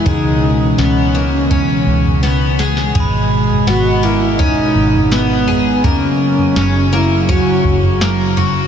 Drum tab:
SD |----o-------o-oo|----o-------o---|----o-------o---|
FT |o-------o--o----|o--o----o--o--o-|o--o----o--o--o-|
BD |o-------o-------|o-------o-------|o-------o-o-----|